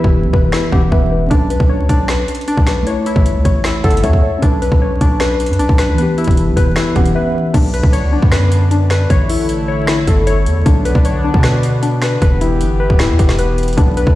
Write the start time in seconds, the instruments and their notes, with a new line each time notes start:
Already playing: tine electric piano E3 B3 G4, synth pluck E4 B4
0.04 808-style bass E1, kick
0.24 808-style bass B1
0.33 808-style bass E1, synth pluck B4, kick
0.52 synth pluck E4, finger snap, snare
0.70 808-style bass E1, tine electric piano E3 B3 C#4 F#5, synth pluck G4, kick
0.92 808-style bass E1, synth pluck B4, tine electric piano E5, kick
1.12 tine electric piano B4
1.27 808-style bass B1, tine electric piano C#4 D4, synth pluck D4, kick, closed hi-hat
1.35 tine electric piano B4
1.50 synth pluck B4, closed hi-hat
1.60 808-style bass B1, kick
1.69 synth pluck C#5
1.79 808-style bass D2
1.89 808-style bass B1, synth pluck D4, kick, closed hi-hat
2.08 synth pluck B4, finger snap, snare, closed hi-hat
2.28 closed hi-hat
2.35 closed hi-hat
2.41 closed hi-hat
2.48 synth pluck D4, closed hi-hat
2.57 808-style bass B1, kick
2.67 synth pluck B4, finger snap, snare, closed hi-hat
2.83 tine electric piano A3 E4, closed hi-hat
2.87 synth pluck C#5, tine electric piano C#5
3.06 synth pluck E4, closed hi-hat
3.16 808-style bass A1, kick
3.26 closed hi-hat
3.35 808-style bass C#2
3.45 808-style bass A1, synth pluck C#5, kick, closed hi-hat
3.64 synth pluck E4, finger snap, snare, closed hi-hat
3.84 808-style bass G1, synth pluck A4, tine electric piano F#5, kick, closed hi-hat
3.91 closed hi-hat
3.97 closed hi-hat
4.03 808-style bass E2, synth pluck C#5, tine electric piano E5, kick, closed hi-hat
4.13 kick
4.23 tine electric piano C#5
4.39 808-style bass B1, tine electric piano C#4 D4, synth pluck D4, kick, closed hi-hat
4.47 tine electric piano B4
4.62 synth pluck B4, closed hi-hat
4.72 808-style bass B1, kick
4.82 synth pluck C#5
5.01 808-style bass B1, synth pluck D4, kick, closed hi-hat
5.20 synth pluck B4, finger snap, snare, closed hi-hat
5.40 closed hi-hat
5.46 808-style bass F#2, closed hi-hat
5.53 closed hi-hat
5.59 808-style bass B1, synth pluck D4, closed hi-hat
5.69 808-style bass B1, kick
5.78 synth pluck B4, finger snap, snare, closed hi-hat
5.89 808-style bass D2
5.95 tine electric piano E3 B3, synth pluck B4, closed hi-hat
6.02 tine electric piano G4
6.18 synth pluck E4, closed hi-hat
6.24 808-style bass E1, kick, closed hi-hat
6.31 closed hi-hat
6.37 closed hi-hat
6.47 808-style bass B1
6.56 808-style bass E1, synth pluck B4, kick, closed hi-hat
6.76 synth pluck E4, finger snap, snare, closed hi-hat
6.94 808-style bass E1, tine electric piano E3 B3 C#4 F#5, synth pluck G4, kick, closed hi-hat
7.06 closed hi-hat
7.15 synth pluck B4, tine electric piano E5
7.35 tine electric piano B4
7.54 808-style bass B1, analog synth pad D3 B3 D4, synth pluck D4, kick, closed hi-hat, crash
7.74 synth pluck B4, closed hi-hat
7.83 808-style bass B1, kick
7.93 synth pluck C#5, closed hi-hat
8.03 808-style bass D2
8.13 808-style bass B1, synth pluck D4
8.22 808-style bass F#2, kick
8.32 synth pluck B4, finger snap, snare, closed hi-hat
8.52 closed hi-hat
8.71 synth pluck D4, closed hi-hat
8.90 synth pluck B4, finger snap, snare, closed hi-hat
9.10 808-style bass A1, analog synth pad A3 E4, synth pluck C#5, kick, closed hi-hat
9.29 synth pluck E4, open hi-hat
9.49 closed hi-hat
9.68 synth pluck C#5
9.87 synth pluck E4, finger snap, snare, closed hi-hat
10.07 808-style bass G1, synth pluck A4, kick, closed hi-hat
10.27 synth pluck C#5, closed hi-hat
10.46 808-style bass E2, closed hi-hat
10.66 808-style bass B1, analog synth pad B3 D4, synth pluck D4, kick, closed hi-hat
10.85 synth pluck B4, closed hi-hat
10.95 808-style bass B1, kick
11.05 synth pluck C#5, closed hi-hat
11.24 synth pluck D4
11.34 808-style bass B2, kick
11.43 synth pluck B4, finger snap, snare, closed hi-hat
11.63 closed hi-hat
11.83 synth pluck D4, closed hi-hat
12.02 synth pluck B4, finger snap, snare, closed hi-hat
12.21 808-style bass E1, analog synth pad E3 B3 G4, synth pluck B4, kick, closed hi-hat
12.41 synth pluck E4, closed hi-hat
12.61 808-style bass G1, closed hi-hat
12.80 synth pluck B4
12.90 808-style bass D1, kick
12.99 synth pluck E4, finger snap, snare, closed hi-hat
13.09 808-style bass E2
13.19 808-style bass E1, synth pluck G4, kick, closed hi-hat
13.29 snare
13.39 synth pluck B4, closed hi-hat
13.58 closed hi-hat
13.63 closed hi-hat
13.68 closed hi-hat
13.73 closed hi-hat
13.77 808-style bass B1, analog synth pad D3 D4, synth pluck D4, kick, closed hi-hat
13.97 synth pluck B4, closed hi-hat
14.07 808-style bass B1, kick